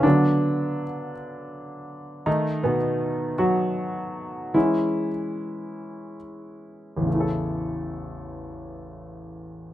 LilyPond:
<<
  \new Staff \with { instrumentName = "Grand piano" } { \time 6/8 \key a \major \tempo 4. = 51 d'4 r2 | dis'8 <b, b>4 <fis fis'>4. | e'2 r4 | r2. | }
  \new Staff \with { instrumentName = "Grand piano" } { \clef bass \time 6/8 \key a \major <d fis b>4. r4. | <dis a>8 r2 r8 | <e gis cis'>8 r2 r8 | <a,, e, cis a e' a'>2. | }
>>